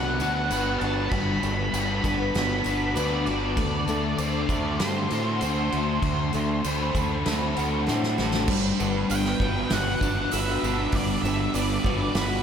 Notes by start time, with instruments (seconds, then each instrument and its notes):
Already playing: fingered electric bass C2, distorted electric guitar G3 B3 D4 F#4 B4, overdriven electric guitar G3 B3 D4 B4, twelve-string acoustic guitar B3 D4, lead electric guitar F#5
0.20 fingered electric bass D2, overdriven electric guitar D4, twelve-string acoustic guitar F#4, distorted electric guitar B4, tambourine, crash
0.51 fingered electric bass G1, twelve-string acoustic guitar B3, distorted electric guitar D4, overdriven electric guitar B4, tambourine, crash
0.80 fingered electric bass G1, distorted electric guitar B3, twelve-string acoustic guitar D4, overdriven electric guitar F#4, lead electric guitar A5, crash
1.10 fingered electric bass G1, overdriven electric guitar G3, distorted electric guitar G3, lead electric guitar B5, kick, tambourine, crash
1.41 fingered electric bass G1, distorted electric guitar B3, overdriven electric guitar D4, tambourine, crash
1.72 fingered electric bass G1, distorted electric guitar D4, twelve-string acoustic guitar D4, overdriven electric guitar B4, tambourine, crash
2.02 fingered electric bass G1, twelve-string acoustic guitar B3, overdriven electric guitar D4, distorted electric guitar B4, lead electric guitar B5, kick, tambourine, crash
2.34 fingered electric bass G1, overdriven electric guitar B3, twelve-string acoustic guitar D4, distorted electric guitar F#4, snare, tambourine, crash
2.64 fingered electric bass G1, overdriven electric guitar D4, twelve-string acoustic guitar F#4, distorted electric guitar B4, tambourine, crash
2.95 fingered electric bass D2, twelve-string acoustic guitar B3, distorted electric guitar D4, overdriven electric guitar B4, lead electric guitar D5, tambourine, crash
3.26 fingered electric bass G1, distorted electric guitar B3, twelve-string acoustic guitar D4, overdriven electric guitar F#4, lead electric guitar D5, crash
3.57 fingered electric bass D2, distorted electric guitar D3, overdriven electric guitar D3, twelve-string acoustic guitar A3, kick, tambourine, crash
3.87 fingered electric bass D2, distorted electric guitar A3, twelve-string acoustic guitar A3, overdriven electric guitar D4, tambourine, crash
4.18 fingered electric bass D2, twelve-string acoustic guitar C4, distorted electric guitar D4, overdriven electric guitar C5, lead electric guitar D5, tambourine, crash
4.49 fingered electric bass D2, twelve-string acoustic guitar A3, overdriven electric guitar D4, distorted electric guitar C5, kick, tambourine, crash
4.80 fingered electric bass G2, overdriven electric guitar A3, twelve-string acoustic guitar C4, distorted electric guitar F#4, lead electric guitar C5, snare, tambourine, crash
5.11 fingered electric bass A2, overdriven electric guitar D4, twelve-string acoustic guitar F#4, distorted electric guitar C5, tambourine, crash
5.40 fingered electric bass D2, twelve-string acoustic guitar A3, distorted electric guitar D4, overdriven electric guitar C5, tambourine, crash
5.72 fingered electric bass D2, distorted electric guitar A3, twelve-string acoustic guitar C4, overdriven electric guitar F#4, crash
6.01 fingered electric bass D2, distorted electric guitar D3, overdriven electric guitar D3, twelve-string acoustic guitar A3, kick, tambourine, crash
6.32 fingered electric bass D2, distorted electric guitar A3, twelve-string acoustic guitar A3, overdriven electric guitar D4, tambourine, crash
6.64 fingered electric bass D2, twelve-string acoustic guitar C4, distorted electric guitar D4, overdriven electric guitar C5, tambourine, crash
6.69 lead electric guitar B4
6.92 fingered electric bass D2, twelve-string acoustic guitar A3, overdriven electric guitar D4, distorted electric guitar C5, kick, crash
6.96 tambourine
7.25 fingered electric bass D2, overdriven electric guitar A3, twelve-string acoustic guitar C4, distorted electric guitar F#4, snare, tambourine, crash
7.55 fingered electric bass D2, overdriven electric guitar D4, twelve-string acoustic guitar F#4, distorted electric guitar C5, crash
7.59 tambourine
7.86 fingered electric bass A2, twelve-string acoustic guitar A3, distorted electric guitar D4, overdriven electric guitar C5, snare, tambourine
8.03 snare
8.17 fingered electric bass A1, distorted electric guitar A3, twelve-string acoustic guitar C4, overdriven electric guitar F#4, snare, tambourine
8.34 snare
8.48 fingered electric bass G1, distorted electric guitar G3, overdriven electric guitar G3, kick, crash
8.79 fingered electric bass G1, twelve-string acoustic guitar B3, overdriven electric guitar D4, tambourine
9.09 fingered electric bass G1, overdriven electric guitar B3, distorted electric guitar D4, lead electric guitar G5, open hi-hat, tambourine
9.25 snare
9.40 fingered electric bass G1, twelve-string acoustic guitar B3, overdriven electric guitar F#4, distorted electric guitar B4, kick
9.70 fingered electric bass G1, overdriven electric guitar B3, distorted electric guitar F#4, twelve-string acoustic guitar F#4, lead electric guitar F#5, snare, open hi-hat, tambourine
10.01 fingered electric bass G1, distorted electric guitar D4, overdriven electric guitar D4, twelve-string acoustic guitar D4, kick, tambourine
10.31 fingered electric bass G1, distorted electric guitar F#4, twelve-string acoustic guitar F#4, overdriven electric guitar B4, lead electric guitar E5, open hi-hat, tambourine
10.63 fingered electric bass G1, distorted electric guitar B3, twelve-string acoustic guitar D4, overdriven electric guitar D4, tambourine
10.92 fingered electric bass G1, overdriven electric guitar G3, distorted electric guitar G3, lead electric guitar D5, kick, open hi-hat
11.22 fingered electric bass G1, twelve-string acoustic guitar B3, overdriven electric guitar D4, lead electric guitar E5, tambourine
11.54 fingered electric bass G1, overdriven electric guitar B3, distorted electric guitar D4, lead electric guitar D5, open hi-hat, tambourine
11.84 fingered electric bass G1, twelve-string acoustic guitar B3, overdriven electric guitar F#4, distorted electric guitar B4, kick
12.15 fingered electric bass G1, overdriven electric guitar B3, distorted electric guitar F#4, twelve-string acoustic guitar F#4, lead electric guitar B4, snare, open hi-hat, tambourine